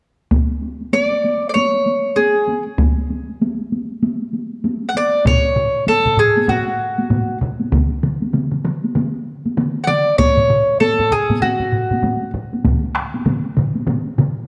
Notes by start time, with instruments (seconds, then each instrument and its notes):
0.31 taiko, taiko high
0.50 taiko high
0.62 taiko high
0.81 taiko high
0.93 mandolin D5, taiko high
1.12 taiko high
1.24 taiko high
1.43 taiko high
1.49 mandolin D5
1.54 mandolin C#5, taiko high
1.74 taiko high
1.86 taiko high
2.16 mandolin G#4, taiko high
2.36 taiko high
2.48 taiko high
2.67 taiko high
2.78 taiko, taiko high
2.98 taiko high
3.10 taiko high
3.29 taiko high
3.41 taiko high
3.60 taiko high
3.72 taiko high
4.03 taiko high
4.33 taiko high
4.64 taiko high
4.89 mandolin F#5
4.95 mandolin D5, taiko high
5.13 taiko high
5.25 mandolin C#5, taiko, taiko low-mid, taiko high
5.56 taiko low-mid
5.87 mandolin A4, taiko low-mid, taiko high
6.05 taiko low-mid
6.17 mandolin G#4, taiko low-mid
6.37 taiko high
6.48 mandolin F#4, taiko low-mid, taiko high
6.98 taiko high
7.10 taiko low-mid, taiko high
7.41 taiko low-mid
7.60 taiko high
7.72 taiko, taiko mid, taiko high
8.03 taiko mid
8.22 taiko high
8.34 taiko mid, taiko high
8.52 taiko mid
8.65 taiko mid
8.84 taiko high
8.95 taiko mid, taiko high
9.46 taiko high
9.57 taiko mid, taiko high
9.84 mandolin D5 F#5, taiko mid
10.18 mandolin C#5, taiko, taiko low-mid, taiko high
10.37 taiko low-mid
10.50 taiko low-mid
10.80 mandolin A4, taiko low-mid, taiko high
10.99 taiko low-mid
11.12 mandolin G#4, taiko low-mid
11.30 taiko low-mid, taiko high
11.42 mandolin F#4, taiko low-mid, taiko high
11.60 taiko low-mid
11.72 taiko low-mid
11.91 taiko low-mid, taiko high
12.03 taiko low-mid, taiko high
12.34 taiko low-mid
12.53 taiko high
12.64 taiko, taiko low-mid, taiko mid, taiko high
12.95 taiko rim
13.14 taiko high
13.26 taiko low-mid, taiko mid, taiko high
13.57 taiko low-mid, taiko mid
13.75 taiko high
13.87 taiko low-mid, taiko mid, taiko high
14.18 taiko low-mid, taiko mid